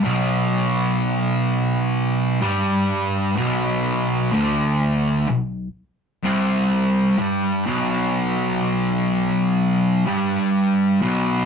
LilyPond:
\new Staff \with { instrumentName = "Distorted electric guitar" } { \clef bass \time 4/4 \key b \phrygian \tempo 4 = 63 <b,, b,>2~ <b,, b,>8 <g, g>4 <b,, b,>8~ | <b,, b,>8 <d, d>4 b,,8 r8 <c, c>4 <g, g>8 | <b,, b,>2~ <b,, b,>8 <g, g>4 <b,, b,>8 | }